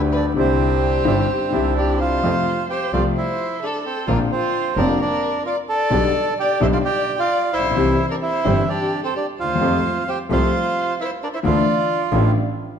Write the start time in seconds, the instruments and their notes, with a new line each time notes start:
Already playing: double bass D2, grand piano D2 D3 A3 B3 G4, bandoneon A3 B3 G4
0.12 bandoneon D4 D5, violin B4
0.34 grand piano C2 C3 D3 G3 C4, double bass C2, bandoneon C4 D4 E4, violin G4
0.38 bandoneon C4 C5, grand piano E4
1.05 grand piano G1 G2 D3 G3 C4 E4, double bass G1, bandoneon C4 D4 E4
1.50 grand piano C2 C3 D3 G3 C4, double bass C2, bandoneon C4 D4 E4
1.55 grand piano E4
1.76 bandoneon D4 D5, violin G4
2.00 bandoneon F4 F5, violin C5
2.23 double bass F2, grand piano F2 C3 F3 A3 F4, bandoneon A3 C4 F4
2.70 bandoneon G4 G5, violin C5
2.93 double bass C2, grand piano C2 C3 F3 A3 F4, bandoneon A3 C4 F4 F5, violin D5
3.17 bandoneon E4 E5, violin C5
3.63 bandoneon D4 D5, violin A4
3.85 bandoneon C4 C5, violin A4
4.07 double bass A#1, grand piano A#1 A#2 D3 A#3 C4 F4, bandoneon A#3 C4 D4 A#4, violin F4
4.31 bandoneon C4 C5, violin F4
4.77 double bass F1, grand piano F1 F2 D3 A#3 C4 F4, bandoneon A#3 C4 D4 D5, violin A#4
5.00 bandoneon D4 D5, violin A#4
5.45 bandoneon F4 F5, violin D5
5.69 bandoneon A4 A5, violin D5
5.90 grand piano B1 B2 D3 G3 B3 G4, double bass B1, bandoneon G3 B3 D4
6.39 bandoneon G4 G5, violin D5
6.59 grand piano B1 B2 D3 G3 B3 G4, double bass B1, bandoneon G3 B3 D4 E4 E5, violin C5
6.73 bandoneon F4 F5, violin D5
6.83 bandoneon G4 G5, violin D5
7.17 bandoneon F4 F5, violin D5
7.53 double bass A#1, bandoneon E4 E5, violin C5
7.59 grand piano A1
7.65 grand piano A#1
7.71 grand piano B1, bandoneon G3
7.75 double bass C2, grand piano C2 C3 E3 G3 C4 G4, bandoneon C4 E4
8.11 bandoneon D4 D5, violin A#4
8.22 bandoneon E4 E5, violin C5
8.44 grand piano G1 G2 E3 G3 C4 G4, double bass G1, bandoneon G3 C4 E4
8.68 bandoneon D4 D5, violin G4
9.03 bandoneon C4 C5, violin A4
9.15 bandoneon D4 D5, violin G4
9.39 double bass D#2, bandoneon F4 F5, violin C5
9.44 grand piano D2
9.49 grand piano D#2
9.55 grand piano E2
9.60 grand piano F2 F3 A3 C4 G4, double bass F2, bandoneon G3 A3 F4
10.08 bandoneon G4 G5, violin C5
10.29 grand piano C2 C3 F3 A3 C4 G4, double bass C2, bandoneon G3 A3 F4 F5, violin C5
11.01 bandoneon E4 E5, violin C5
11.23 bandoneon D4 D5, violin A#4
11.33 bandoneon E4 E5, violin C5
11.43 grand piano D2 D3 E3 A3 D4 F4, double bass D2, bandoneon F3 D4 E4 F4 F5, violin D5
12.11 double bass A1, grand piano A1 A2 E3 A3 D4 F4, bandoneon F3 D4 E4